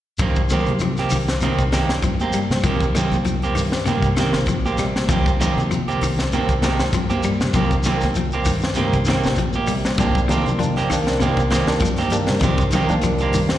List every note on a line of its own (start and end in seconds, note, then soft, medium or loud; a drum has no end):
0.18 0.45 C2 medium
0.18 0.41 D#3 medium
0.18 0.41 A#3 medium
0.18 0.41 C4 medium
0.18 0.41 G4 medium
0.18 muted clean electric guitar stroke medium
0.18 kick medium
0.18 closed hi-hat medium
0.18 low conga medium
0.18 shekere medium
0.35 kick medium
0.35 shekere soft
0.49 0.66 D#3 medium
0.49 0.71 D#3 medium
0.49 0.72 A#3 medium
0.49 0.72 C4 medium
0.49 0.72 G4 medium
0.49 closed hi-hat soft
0.49 high conga medium
0.49 low conga medium
0.49 shekere medium
0.66 1.04 C3 medium
0.66 closed hi-hat soft
0.66 high conga medium
0.66 low conga medium
0.66 shekere soft
0.79 0.97 F3 medium
0.79 closed hi-hat medium
0.79 shekere medium
0.97 1.17 A#3 soft
0.97 1.16 C4 soft
0.97 1.16 G4 medium
0.97 snare soft
0.97 closed hi-hat soft
0.97 shekere soft
1.10 1.37 C2 medium
1.10 1.27 D#3 medium
1.10 open hi-hat medium
1.10 shekere medium
1.28 snare medium
1.28 closed hi-hat soft
1.28 shekere soft
1.41 1.58 C3 medium
1.41 1.63 D#3 medium
1.41 1.63 A#3 medium
1.41 1.63 C4 medium
1.41 1.63 G4 medium
1.41 closed hi-hat medium
1.41 high conga medium
1.41 shekere medium
1.58 1.84 C2 medium
1.58 kick medium
1.58 closed hi-hat soft
1.58 shekere soft
1.72 1.93 D#3 medium
1.72 1.88 D#3 medium
1.72 1.93 A#3 medium
1.72 1.93 C4 medium
1.72 1.94 G4 medium
1.72 snare medium
1.72 closed hi-hat soft
1.72 high conga medium
1.72 shekere medium
1.89 muted fingered electric bass stroke soft
1.89 snare medium
1.89 closed hi-hat soft
1.89 shekere soft
2.02 2.28 G2 medium
2.02 2.19 F3 medium
2.02 kick medium
2.02 closed hi-hat medium
2.02 shekere medium
2.20 2.39 A#3 soft
2.20 2.38 C4 soft
2.20 2.38 G4 medium
2.20 closed hi-hat soft
2.20 high conga medium
2.20 shekere soft
2.33 2.50 G3 medium
2.33 muted fingered electric bass stroke soft
2.33 closed hi-hat medium
2.33 shekere medium
2.50 2.62 C3 medium
2.50 snare medium
2.50 closed hi-hat soft
2.50 high conga medium
2.50 shekere soft
2.64 2.89 C3 medium
2.64 2.85 D#3 medium
2.64 2.80 F3 medium
2.64 2.85 A#3 medium
2.64 2.85 C4 medium
2.64 2.85 G4 medium
2.64 kick medium
2.64 closed hi-hat medium
2.64 low conga medium
2.64 shekere medium
2.80 kick medium
2.80 closed hi-hat soft
2.80 shekere soft
2.95 3.11 D#3 medium
2.95 3.16 D#3 medium
2.95 3.16 A#3 medium
2.95 3.16 C4 medium
2.95 3.16 G4 medium
2.95 closed hi-hat soft
2.95 high conga medium
2.95 low conga medium
2.95 shekere medium
3.12 3.48 C2 medium
3.12 closed hi-hat soft
3.12 high conga medium
3.12 low conga medium
3.12 shekere soft
3.25 3.41 F3 medium
3.25 closed hi-hat medium
3.25 shekere medium
3.42 3.61 A#3 soft
3.42 3.61 C4 soft
3.42 3.61 G4 medium
3.42 closed hi-hat soft
3.42 shekere soft
3.55 3.95 G2 medium
3.55 3.71 D#3 medium
3.55 open hi-hat medium
3.55 shekere medium
3.72 snare medium
3.72 shekere soft
3.85 4.02 C3 medium
3.85 4.07 D#3 medium
3.85 4.07 A#3 medium
3.85 4.07 C4 medium
3.85 4.08 G4 medium
3.85 snare soft
3.85 closed hi-hat medium
3.85 high conga medium
3.85 shekere medium
4.02 4.35 C3 medium
4.02 kick medium
4.02 closed hi-hat soft
4.02 shekere soft
4.17 4.33 D#3 medium
4.17 4.38 D#3 medium
4.17 4.39 A#3 medium
4.17 4.39 C4 medium
4.17 4.39 G4 medium
4.17 snare medium
4.17 closed hi-hat soft
4.17 high conga medium
4.17 shekere medium
4.33 4.80 A#1 medium
4.33 snare medium
4.33 shekere soft
4.46 4.64 F3 medium
4.46 kick medium
4.46 closed hi-hat medium
4.46 shekere medium
4.66 4.83 A#3 soft
4.66 4.83 C4 medium
4.66 4.83 G4 medium
4.66 high conga medium
4.66 shekere soft
4.78 4.93 C3 medium
4.78 4.95 G3 medium
4.78 snare soft
4.78 closed hi-hat soft
4.78 shekere medium
4.96 snare medium
4.96 high conga medium
4.96 shekere soft
5.08 5.34 C2 medium
5.08 5.30 D#3 medium
5.08 5.25 F3 medium
5.08 5.30 A#3 medium
5.08 5.30 C4 medium
5.08 5.31 G4 medium
5.08 kick medium
5.08 closed hi-hat medium
5.08 low conga medium
5.08 shekere medium
5.26 kick medium
5.26 shekere soft
5.40 5.60 D#3 medium
5.40 5.57 D#3 medium
5.40 5.60 A#3 medium
5.40 5.61 C4 medium
5.40 5.61 G4 medium
5.40 closed hi-hat soft
5.40 high conga medium
5.40 low conga medium
5.40 shekere medium
5.57 5.93 C3 medium
5.57 closed hi-hat soft
5.57 high conga medium
5.57 low conga medium
5.57 shekere soft
5.71 5.86 F3 medium
5.71 closed hi-hat medium
5.71 shekere medium
5.88 6.06 A#3 soft
5.88 6.06 C4 medium
5.88 6.05 G4 medium
5.88 closed hi-hat soft
5.88 shekere soft
6.01 6.27 C2 medium
6.01 6.18 D#3 medium
6.01 open hi-hat medium
6.01 shekere medium
6.19 snare medium
6.19 closed hi-hat soft
6.19 shekere soft
6.32 6.49 C3 medium
6.32 6.53 D#3 medium
6.32 6.53 A#3 medium
6.32 6.53 C4 medium
6.32 6.53 G4 medium
6.32 closed hi-hat medium
6.32 high conga medium
6.32 shekere medium
6.49 6.74 C2 medium
6.49 kick medium
6.49 closed hi-hat soft
6.49 shekere soft
6.62 6.82 D#3 medium
6.62 6.79 D#3 medium
6.62 6.83 A#3 medium
6.62 6.83 C4 medium
6.62 6.83 G4 medium
6.62 snare medium
6.62 closed hi-hat soft
6.62 high conga medium
6.62 shekere medium
6.79 muted fingered electric bass stroke soft
6.79 snare medium
6.79 closed hi-hat soft
6.79 shekere soft
6.93 7.18 G2 medium
6.93 7.10 F3 medium
6.93 kick medium
6.93 closed hi-hat medium
6.93 shekere medium
7.10 7.28 A#3 soft
7.10 7.27 C4 soft
7.10 7.27 G4 medium
7.10 closed hi-hat soft
7.10 high conga medium
7.10 shekere soft
7.23 7.40 G3 medium
7.23 muted fingered electric bass stroke soft
7.23 closed hi-hat medium
7.23 shekere medium
7.41 7.53 C3 medium
7.41 snare medium
7.41 closed hi-hat soft
7.41 shekere soft
7.53 7.79 C3 medium
7.53 7.74 D#3 medium
7.53 7.70 F3 medium
7.53 7.75 A#3 medium
7.53 7.75 C4 medium
7.53 7.75 G4 medium
7.53 kick medium
7.53 closed hi-hat medium
7.53 low conga medium
7.53 shekere medium
7.71 kick medium
7.71 closed hi-hat soft
7.71 shekere soft
7.83 8.05 D#3 medium
7.83 8.02 D#3 medium
7.83 8.06 A#3 medium
7.83 8.06 C4 medium
7.83 8.06 G4 medium
7.83 snare soft
7.83 closed hi-hat soft
7.83 high conga medium
7.83 low conga medium
7.83 shekere medium
8.01 8.39 C2 medium
8.01 snare soft
8.01 closed hi-hat soft
8.01 high conga medium
8.01 shekere soft
8.15 8.32 F3 medium
8.15 closed hi-hat medium
8.15 shekere medium
8.32 8.51 A#3 soft
8.32 8.51 C4 soft
8.32 8.50 G4 medium
8.32 closed hi-hat soft
8.32 shekere soft
8.45 8.85 G2 medium
8.45 8.62 D#3 medium
8.45 kick medium
8.45 open hi-hat medium
8.45 shekere medium
8.61 snare medium
8.61 shekere soft
8.74 8.93 C3 medium
8.74 8.96 D#3 medium
8.74 8.96 A#3 medium
8.74 8.97 C4 medium
8.74 8.97 G4 medium
8.74 closed hi-hat medium
8.74 high conga medium
8.74 shekere medium
8.93 9.27 C3 medium
8.93 kick medium
8.93 closed hi-hat soft
8.93 shekere soft
9.05 9.27 D#3 medium
9.05 9.24 D#3 medium
9.05 9.27 A#3 medium
9.05 9.27 C4 medium
9.05 9.27 G4 medium
9.05 snare medium
9.05 closed hi-hat soft
9.05 high conga medium
9.05 shekere medium
9.23 9.69 A#1 medium
9.23 snare medium
9.23 shekere soft
9.36 9.54 F3 medium
9.36 closed hi-hat medium
9.36 shekere medium
9.53 9.73 A#3 soft
9.53 9.72 G4 medium
9.53 muted clean electric guitar stroke soft
9.53 high conga medium
9.53 shekere soft
9.67 9.82 C3 medium
9.67 9.83 G3 medium
9.67 open hi-hat medium
9.67 shekere medium
9.85 snare medium
9.85 high conga medium
9.85 shekere soft
9.98 10.23 C2 medium
9.98 10.15 D#3 medium
9.98 10.14 F3 medium
9.98 10.19 A#3 medium
9.98 10.15 A#3 medium
9.98 10.19 C4 medium
9.98 10.15 D4 medium
9.98 10.20 G4 medium
9.98 muted clean electric guitar stroke medium
9.98 kick medium
9.98 closed hi-hat medium
9.98 low conga medium
9.98 shekere medium
10.15 kick medium
10.15 shekere soft
10.28 10.44 D#3 medium
10.28 10.45 D#3 medium
10.28 10.45 A#3 medium
10.28 10.50 A#3 medium
10.28 10.50 C4 medium
10.28 10.45 D4 medium
10.28 10.50 G4 medium
10.28 closed hi-hat soft
10.28 high conga medium
10.28 low conga medium
10.28 shekere medium
10.46 10.83 C3 medium
10.46 closed hi-hat soft
10.46 low conga medium
10.46 shekere soft
10.59 10.75 D#3 medium
10.59 10.75 F3 medium
10.59 10.75 A#3 medium
10.59 10.75 D4 medium
10.59 closed hi-hat medium
10.59 shekere medium
10.76 10.95 A#3 soft
10.76 10.94 C4 soft
10.76 10.94 G4 medium
10.76 snare soft
10.76 closed hi-hat soft
10.76 shekere soft
10.90 11.15 C2 medium
10.90 11.06 D#3 medium
10.90 11.27 D#3 medium
10.90 11.26 A#3 medium
10.90 11.26 D4 loud
10.90 snare soft
10.90 open hi-hat medium
10.90 shekere medium
11.07 snare medium
11.07 closed hi-hat soft
11.07 shekere soft
11.20 11.36 C3 medium
11.20 11.41 D#3 medium
11.20 11.41 A#3 medium
11.20 11.41 C4 medium
11.20 11.42 G4 medium
11.20 closed hi-hat medium
11.20 high conga medium
11.20 shekere medium
11.37 11.62 C2 medium
11.37 kick medium
11.37 closed hi-hat soft
11.37 shekere soft
11.50 11.71 D#3 medium
11.50 11.67 D#3 medium
11.50 11.71 A#3 medium
11.50 11.71 C4 medium
11.50 11.71 G4 medium
11.50 snare medium
11.50 closed hi-hat soft
11.50 high conga medium
11.50 shekere medium
11.67 11.88 D#3 medium
11.67 11.88 A#3 medium
11.67 11.88 D4 medium
11.67 muted fingered electric bass stroke soft
11.67 snare medium
11.67 closed hi-hat soft
11.71 shekere soft
11.80 12.06 G2 medium
11.80 11.98 F3 medium
11.80 kick medium
11.80 closed hi-hat medium
11.85 shekere medium
11.96 12.16 A#3 soft
11.96 12.16 C4 soft
11.96 12.16 G4 medium
11.96 snare soft
11.96 closed hi-hat soft
11.96 high conga medium
11.96 shekere soft
12.10 12.47 D#3 medium
12.10 12.28 G3 medium
12.10 12.47 A#3 medium
12.10 12.47 D4 medium
12.10 muted fingered electric bass stroke soft
12.10 closed hi-hat medium
12.10 shekere medium
12.27 12.40 C3 medium
12.27 snare medium
12.27 closed hi-hat soft
12.27 shekere soft
12.39 12.67 C3 loud
12.39 12.63 D#3 medium
12.39 12.59 F3 medium
12.39 muted clean electric guitar stroke medium
12.39 kick medium
12.39 snare soft
12.39 closed hi-hat medium
12.39 low conga medium
12.39 shekere medium
12.44 12.63 C4 medium
12.44 12.63 G4 medium
12.57 kick medium
12.57 closed hi-hat soft
12.57 shekere soft
12.71 12.89 D#3 medium
12.71 12.93 D#3 medium
12.71 12.94 A#3 medium
12.71 12.94 C4 medium
12.71 snare soft
12.71 closed hi-hat soft
12.71 high conga medium
12.71 low conga medium
12.71 shekere medium
12.75 12.94 G4 medium
12.89 13.26 C2 medium
12.89 13.44 D#3 medium
12.89 13.44 A#3 medium
12.89 13.44 D4 medium
12.89 closed hi-hat soft
12.89 high conga medium
12.89 low conga medium
12.89 shekere soft
13.02 13.19 F3 medium
13.02 closed hi-hat medium
13.02 shekere medium
13.18 13.38 C4 soft
13.18 13.38 G4 medium
13.18 closed hi-hat soft
13.18 shekere soft
13.23 13.39 A#3 soft
13.33 13.58 G2 medium
13.33 13.50 D#3 medium
13.33 open hi-hat medium
13.33 shekere medium
13.49 snare medium
13.49 shekere soft